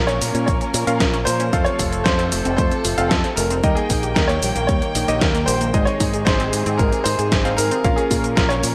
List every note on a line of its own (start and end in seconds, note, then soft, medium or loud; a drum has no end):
0.00 0.18 A#1 medium
0.00 3.60 F3 medium
0.00 1.51 A#3 medium
0.00 0.85 C#4 medium
0.00 1.51 C#4 medium
0.00 0.85 F4 medium
0.00 0.85 A#4 medium
0.00 1.51 A#4 medium
0.00 0.85 F5 loud
0.07 0.15 C#4 loud
0.07 0.45 C#5 loud
0.07 closed hi-hat soft
0.07 cabasa soft
0.21 0.33 A#2 medium
0.21 0.32 A#3 medium
0.21 open hi-hat loud
0.21 cabasa medium
0.35 0.46 A#2 medium
0.35 0.45 C#4 loud
0.35 closed hi-hat soft
0.35 cabasa soft
0.46 0.59 A#1 medium
0.46 0.58 A#3 loud
0.46 1.01 C#5 medium
0.46 kick loud
0.46 closed hi-hat medium
0.46 cabasa soft
0.61 0.73 C#4 medium
0.61 closed hi-hat soft
0.61 cabasa soft
0.74 0.86 A#2 loud
0.74 0.85 F4 medium
0.74 open hi-hat loud
0.74 cabasa medium
0.87 0.99 A#2 loud
0.87 1.03 C#4 loud
0.87 1.03 F4 medium
0.87 0.98 A#4 medium
0.87 1.03 A#4 medium
0.87 1.03 F5 loud
0.87 closed hi-hat soft
0.87 cabasa soft
0.99 1.23 A#1 medium
0.99 1.07 F4 medium
0.99 1.05 A#4 medium
0.99 kick loud
0.99 snare loud
0.99 closed hi-hat medium
0.99 cabasa soft
1.13 1.20 C#4 loud
1.13 closed hi-hat soft
1.13 cabasa soft
1.25 1.50 A#2 loud
1.25 1.37 A#3 medium
1.25 1.67 C5 loud
1.25 open hi-hat loud
1.25 cabasa medium
1.40 1.50 C#4 loud
1.40 closed hi-hat soft
1.40 cabasa soft
1.53 1.65 F2 loud
1.53 3.61 C3 medium
1.53 2.95 A3 medium
1.53 1.64 A3 loud
1.53 3.62 A3 medium
1.53 2.95 F4 medium
1.53 2.95 A4 medium
1.53 3.61 A4 medium
1.53 2.95 F5 loud
1.53 kick loud
1.53 closed hi-hat medium
1.53 cabasa soft
1.65 1.79 C4 medium
1.65 2.06 C#5 loud
1.65 closed hi-hat soft
1.65 cabasa soft
1.79 2.02 F1 medium
1.79 1.90 F4 medium
1.79 kick medium
1.79 open hi-hat loud
1.79 cabasa medium
1.93 2.03 A4 medium
1.93 closed hi-hat soft
1.93 cabasa soft
2.04 2.29 F2 medium
2.04 2.12 F4 medium
2.04 2.55 C5 loud
2.04 kick loud
2.04 snare loud
2.04 closed hi-hat medium
2.04 cabasa soft
2.19 2.25 C4 loud
2.19 closed hi-hat soft
2.19 cabasa soft
2.32 2.44 F1 medium
2.32 2.43 A3 medium
2.32 open hi-hat loud
2.32 cabasa medium
2.45 2.57 F1 medium
2.45 2.56 C4 loud
2.45 closed hi-hat soft
2.45 cabasa soft
2.57 2.70 F2 medium
2.57 2.69 A3 loud
2.57 3.12 C5 loud
2.57 kick loud
2.57 closed hi-hat medium
2.57 cabasa soft
2.71 2.84 C4 medium
2.71 closed hi-hat soft
2.71 cabasa soft
2.85 2.96 F1 medium
2.85 2.95 F4 medium
2.85 open hi-hat loud
2.85 cabasa medium
2.98 3.09 F1 loud
2.98 3.13 C4 loud
2.98 3.13 F4 medium
2.98 3.13 A4 medium
2.98 3.08 A4 medium
2.98 3.13 F5 loud
2.98 closed hi-hat soft
2.98 cabasa soft
3.09 3.22 F2 loud
3.09 3.17 F4 medium
3.09 3.37 A4 medium
3.09 kick loud
3.09 snare loud
3.09 closed hi-hat medium
3.09 cabasa soft
3.24 3.30 C4 loud
3.24 closed hi-hat soft
3.24 cabasa soft
3.36 3.60 F1 loud
3.36 3.48 A3 medium
3.36 3.77 A#4 loud
3.36 open hi-hat loud
3.36 cabasa medium
3.50 3.61 C4 loud
3.50 closed hi-hat soft
3.50 cabasa soft
3.64 3.75 D#2 loud
3.64 7.81 D#3 medium
3.64 3.74 G3 loud
3.64 5.06 A#3 medium
3.64 5.72 A#3 medium
3.64 5.06 D#4 medium
3.64 5.06 D#5 loud
3.64 5.06 G5 medium
3.64 5.72 G5 medium
3.64 kick loud
3.64 closed hi-hat medium
3.64 cabasa soft
3.75 3.89 A#3 medium
3.75 4.17 G#4 medium
3.75 closed hi-hat soft
3.75 cabasa soft
3.90 4.13 A#1 medium
3.90 4.00 D#4 medium
3.90 kick medium
3.90 open hi-hat loud
3.90 cabasa medium
4.03 4.14 G4 medium
4.03 closed hi-hat soft
4.03 cabasa soft
4.14 4.39 D#2 medium
4.14 4.23 D#4 medium
4.14 4.29 A#4 loud
4.14 kick loud
4.14 snare loud
4.14 closed hi-hat medium
4.14 cabasa soft
4.28 4.36 A#3 loud
4.28 4.65 C#5 loud
4.28 closed hi-hat soft
4.28 cabasa soft
4.42 4.54 A#1 medium
4.42 4.53 G3 medium
4.42 open hi-hat loud
4.42 cabasa medium
4.56 4.67 A#1 medium
4.56 4.66 A#3 loud
4.56 closed hi-hat soft
4.56 cabasa soft
4.67 4.80 D#2 medium
4.67 4.79 G3 loud
4.67 5.22 C#5 loud
4.67 kick loud
4.67 closed hi-hat medium
4.67 cabasa soft
4.82 4.95 A#3 medium
4.82 closed hi-hat soft
4.82 cabasa soft
4.95 5.07 A#1 loud
4.95 5.06 D#4 medium
4.95 open hi-hat loud
4.95 cabasa medium
5.08 5.20 A#1 loud
5.08 5.24 A#3 medium
5.08 5.24 D#4 medium
5.08 5.24 G4 medium
5.08 5.19 G4 medium
5.08 5.24 D#5 loud
5.08 closed hi-hat soft
5.08 cabasa soft
5.19 5.45 D#2 medium
5.19 5.28 D#4 medium
5.19 5.48 A#4 medium
5.19 kick loud
5.19 snare loud
5.19 closed hi-hat medium
5.19 cabasa soft
5.35 5.41 A#3 loud
5.35 closed hi-hat soft
5.35 cabasa soft
5.46 5.71 A#1 loud
5.46 5.58 G3 medium
5.46 5.87 C5 loud
5.46 open hi-hat loud
5.46 cabasa medium
5.61 5.71 A#3 loud
5.61 closed hi-hat soft
5.61 cabasa soft
5.74 5.86 G#1 loud
5.74 7.83 C3 medium
5.74 7.16 G#3 medium
5.74 5.85 G#3 loud
5.74 7.83 G#3 medium
5.74 7.16 D#4 medium
5.74 7.16 G#4 medium
5.74 7.83 G#4 medium
5.74 7.16 D#5 loud
5.74 kick loud
5.74 closed hi-hat medium
5.74 cabasa soft
5.85 6.00 C4 medium
5.85 6.27 C#5 loud
5.85 closed hi-hat soft
5.85 cabasa soft
6.00 6.23 G#2 medium
6.00 6.11 D#4 medium
6.00 kick medium
6.00 open hi-hat loud
6.00 cabasa medium
6.14 6.24 G#4 medium
6.14 closed hi-hat soft
6.14 cabasa soft
6.25 6.50 G#1 medium
6.25 6.33 D#4 medium
6.25 6.80 C5 loud
6.25 kick loud
6.25 snare loud
6.25 closed hi-hat medium
6.25 cabasa soft
6.40 6.46 C4 loud
6.40 closed hi-hat soft
6.40 cabasa soft
6.53 6.65 G#2 medium
6.53 6.64 G#3 medium
6.53 open hi-hat loud
6.53 cabasa medium
6.66 6.78 G#2 medium
6.66 6.77 C4 loud
6.66 closed hi-hat soft
6.66 cabasa soft
6.78 6.91 G#1 medium
6.78 6.90 G#3 loud
6.78 7.06 A#4 loud
6.78 kick loud
6.78 closed hi-hat medium
6.78 cabasa soft
6.92 7.05 C4 medium
6.92 closed hi-hat soft
6.92 cabasa soft
7.04 7.17 G#2 medium
7.04 7.16 D#4 medium
7.04 7.54 C5 loud
7.04 open hi-hat loud
7.04 cabasa medium
7.19 7.30 G#2 medium
7.19 7.29 G#4 medium
7.19 closed hi-hat soft
7.19 cabasa soft
7.32 7.55 G#1 medium
7.32 7.38 D#4 medium
7.32 kick loud
7.32 snare loud
7.32 closed hi-hat medium
7.32 cabasa soft
7.45 7.51 C4 loud
7.45 7.81 C4 medium
7.45 7.81 D#4 medium
7.45 7.81 G#4 medium
7.45 7.81 F5 medium
7.45 closed hi-hat soft
7.45 cabasa soft
7.57 7.70 G#2 medium
7.57 7.69 G#3 medium
7.57 7.98 A#4 loud
7.57 open hi-hat loud
7.57 cabasa medium
7.71 7.82 C4 loud
7.71 closed hi-hat soft
7.71 cabasa soft
7.84 7.96 A#1 loud
7.84 8.75 F3 medium
7.84 7.95 A#3 loud
7.84 8.75 A#3 medium
7.84 8.75 C#4 medium
7.84 8.75 F4 medium
7.84 8.75 A#4 medium
7.84 8.75 F5 loud
7.84 kick loud
7.84 closed hi-hat medium
7.84 cabasa soft
7.96 8.10 C#4 medium
7.96 8.38 G#4 medium
7.96 closed hi-hat soft
7.96 cabasa soft
8.11 8.34 A#2 medium
8.11 8.21 F4 medium
8.11 kick medium
8.11 open hi-hat loud
8.11 cabasa medium
8.24 8.35 A#4 medium
8.24 closed hi-hat soft
8.24 cabasa soft
8.35 8.60 A#1 medium
8.35 8.44 F4 medium
8.35 8.50 A#4 loud
8.35 kick loud
8.35 snare loud
8.35 closed hi-hat medium
8.35 cabasa soft
8.49 8.57 C#4 loud
8.49 8.75 C#5 loud
8.49 closed hi-hat soft
8.49 cabasa soft
8.63 8.75 A#2 medium
8.63 8.74 A#3 medium
8.63 open hi-hat loud
8.63 cabasa medium